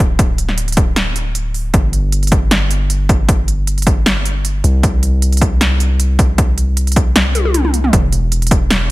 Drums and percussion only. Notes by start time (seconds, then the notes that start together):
0.19 kick, closed hi-hat
0.38 closed hi-hat
0.49 snare
0.58 closed hi-hat
0.68 closed hi-hat
0.72 closed hi-hat
0.77 kick, closed hi-hat
0.96 snare, closed hi-hat
1.16 closed hi-hat
1.35 closed hi-hat
1.54 open hi-hat
1.74 kick, closed hi-hat
1.93 closed hi-hat
2.12 closed hi-hat
2.23 closed hi-hat
2.27 closed hi-hat
2.32 kick, closed hi-hat
2.51 snare, closed hi-hat
2.71 closed hi-hat
2.90 closed hi-hat
3.09 kick, closed hi-hat
3.29 kick, closed hi-hat
3.48 closed hi-hat
3.67 closed hi-hat
3.78 closed hi-hat
3.82 closed hi-hat
3.87 kick, closed hi-hat
4.06 snare, closed hi-hat
4.25 closed hi-hat
4.45 closed hi-hat
4.64 closed hi-hat
4.83 kick, closed hi-hat
5.03 closed hi-hat
5.22 closed hi-hat
5.32 closed hi-hat
5.37 closed hi-hat
5.41 kick, closed hi-hat
5.61 snare, closed hi-hat
5.80 closed hi-hat
6.00 closed hi-hat
6.19 kick, closed hi-hat
6.38 kick, closed hi-hat
6.58 closed hi-hat
6.77 closed hi-hat
6.87 closed hi-hat
6.92 closed hi-hat
6.96 kick, closed hi-hat
7.16 snare, closed hi-hat
7.35 closed hi-hat, high tom
7.45 high tom
7.54 closed hi-hat, mid tom
7.65 mid tom
7.74 closed hi-hat
7.84 mid tom
7.93 kick, closed hi-hat
8.12 closed hi-hat
8.32 closed hi-hat
8.42 closed hi-hat
8.47 closed hi-hat
8.51 kick, closed hi-hat
8.70 snare, closed hi-hat